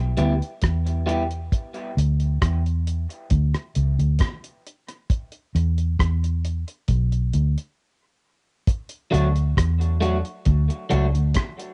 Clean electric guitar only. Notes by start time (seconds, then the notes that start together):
0.17 G3 B3 E4 G4
1.06 G3 B3 E4 G4
9.11 F#3 A3 D4 F#4
10.00 F#3 A3 D4 F#4
10.90 F#3 A3 D4 F#4